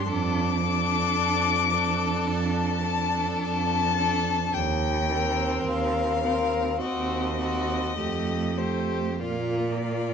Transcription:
0.07 cello F2, viola D4, violin A4 D6
0.62 viola D4, violin A4
1.17 cello F2
1.71 viola D4, violin A4
2.27 cello F2, violin A5
2.83 viola D4, violin A4
3.39 cello F2, violin A5
3.97 viola D4, violin A4
4.54 cello D#2, violin G5
5.10 viola C4, violin A#4
5.65 cello D#2, violin F5
6.23 viola C4, violin A#4
6.80 cello D#2, viola C4, violin F#4 D#5
7.38 viola C4, violin F#4
7.97 cello F2, viola A3, violin G4
8.57 viola A3, violin G4 C5
9.20 cello A#2, viola A#3, violin F4 D5
9.86 viola A#3, violin F4

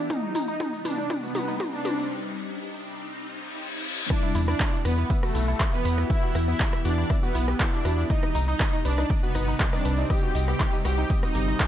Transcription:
Already playing: riser
0.10 ambient pad C3 G3 D4 D#4, supersaw synth D#4, synth pluck D#4, kick, mid tom, shaker
0.23 synth pluck D#4
0.35 synth pluck D#4, open hi-hat, mid tom, shaker
0.47 supersaw synth D#4, synth pluck D#4, shaker
0.60 synth pluck D#4, kick, mid tom, shaker
0.73 synth pluck D#4, shaker
0.85 supersaw synth D4, synth pluck B4, open hi-hat, mid tom, shaker
0.98 synth pluck D#4, shaker
1.10 synth pluck D#5, kick, mid tom, shaker
1.23 supersaw synth B3, synth pluck F#4, shaker
1.35 synth pluck D#4, open hi-hat, mid tom, shaker
1.48 synth pluck D#4, shaker
1.59 synth pluck D#4, kick, mid tom, shaker
1.73 analog synth pad C3 G3 C4, supersaw synth D4, synth pluck D#4, shaker
1.85 synth pluck B4, open hi-hat, mid tom, shaker
1.98 synth pluck D#4, shaker
2.10 ambient pad C4
3.10 reverse cymbal
4.10 ambient pad E3 B3 F#4 G4, supersaw synth D4, synth pluck E4 E5, analog polysynth D5, kick, cross-stick, crash, shaker
4.23 synth pluck E4 E5
4.35 analog synth bass E2, synth pluck E4 E5, open hi-hat, shaker
4.48 supersaw synth D4, synth pluck E4 E5, analog polysynth D5, cross-stick, shaker
4.60 synth pluck E4 E5, kick, clap, shaker
4.73 synth pluck E4 E5, shaker
4.85 analog synth bass E2, supersaw synth B3, synth pluck B4 B5, analog polysynth B4, cross-stick, open hi-hat, shaker
4.98 synth pluck E4 E5, shaker
5.10 synth pluck E5 E6, kick, shaker
5.23 supersaw synth A3, synth pluck F#4 F#5, analog polysynth A4, cross-stick, shaker
5.35 analog synth bass B1, synth pluck E4 E5, open hi-hat, shaker
5.48 synth pluck E4 E5, shaker
5.60 synth pluck E4 E5, kick, cross-stick, clap, shaker
5.73 analog synth pad E3 B3 E4, supersaw synth B3, synth pluck E4 E5, analog polysynth B4, shaker
5.84 analog synth bass E2, synth pluck B4 B5, open hi-hat, shaker
5.98 synth pluck E4 E5, cross-stick, shaker
6.10 supersaw synth E4, ambient pad E4, analog polysynth E5, synth pluck E5 E6, kick, shaker
6.23 synth pluck F#4 F#5
6.35 analog synth bass E2, synth pluck E5 E6, cross-stick, open hi-hat, shaker
6.48 synth pluck B3 B4, supersaw synth E4, analog polysynth E5, shaker
6.60 synth pluck E4 E5, kick, clap, shaker
6.73 synth pluck E4 E5, cross-stick, shaker
6.85 analog synth bass E2, supersaw synth D4, synth pluck F#4 F#5, analog polysynth D5, open hi-hat, shaker
6.98 synth pluck E4 E5, shaker
7.10 synth pluck E5 E6, kick, cross-stick, shaker
7.23 supersaw synth B3, synth pluck F#4 F#5, analog polysynth B4, shaker
7.35 analog synth bass B1, synth pluck E4 E5, open hi-hat, shaker
7.48 synth pluck G4 G5, cross-stick, shaker
7.60 synth pluck E4 E5, kick, clap, shaker
7.73 analog synth pad E3 B3 E4, supersaw synth D4, synth pluck E4 E5, analog polysynth D5, shaker
7.85 analog synth bass E2, synth pluck F#4 F#5, cross-stick, open hi-hat, shaker
7.97 synth pluck E4 E5, shaker
8.10 ambient pad C3 G3 D#4, supersaw synth D#4, synth pluck D#4 D#5, analog polysynth D#5, kick, shaker
8.23 synth pluck D#4 D#5, cross-stick
8.35 analog synth bass C2, synth pluck D#4 D#5, open hi-hat, shaker
8.48 supersaw synth D#4, synth pluck D#4 D#5, analog polysynth D#5, shaker
8.60 synth pluck D#4 D#5, kick, cross-stick, clap, shaker
8.73 synth pluck D#4 D#5, shaker
8.85 analog synth bass C2, supersaw synth D4, synth pluck B4 B5, analog polysynth D5, open hi-hat, shaker
8.97 synth pluck D#4 D#5, cross-stick, shaker
9.10 synth pluck D#5 D#6, kick, shaker
9.23 supersaw synth B3, synth pluck F#4 F#5, analog polysynth B4, shaker
9.35 analog synth bass G1, synth pluck D#4 D#5, cross-stick, open hi-hat, shaker
9.47 synth pluck D#4 D#5, shaker
9.60 kick, clap, shaker
9.73 analog synth pad C3 G3 C4, supersaw synth D4, synth pluck D#4 D#5, analog polysynth D5, cross-stick, shaker
9.85 analog synth bass C2, synth pluck B4 B5, open hi-hat, shaker
9.98 synth pluck D#4 D#5, shaker
10.10 supersaw synth G4, synth pluck D#5 D#6, analog polysynth G5, kick, cross-stick, shaker
10.23 synth pluck F#4 F#5
10.35 analog synth bass C2, synth pluck D#5 D#6, open hi-hat, shaker
10.48 synth pluck B3 B4, supersaw synth G4, analog polysynth G5, cross-stick, shaker
10.60 synth pluck D#4, kick, clap, shaker
10.73 synth pluck D#4 D#5, shaker
10.85 analog synth bass C2, synth pluck F#4 F#5, supersaw synth G4, analog polysynth G5, cross-stick, open hi-hat, shaker
10.98 synth pluck D#4 D#5, shaker
11.10 synth pluck D#5 D#6, kick, shaker
11.23 supersaw synth D#4, synth pluck F#4 F#5, analog polysynth D#5, cross-stick, shaker
11.35 analog synth bass G1, synth pluck G4 G5, open hi-hat, shaker
11.47 synth pluck D#4 D#5, shaker
11.60 synth pluck G4, kick, cross-stick, clap, shaker

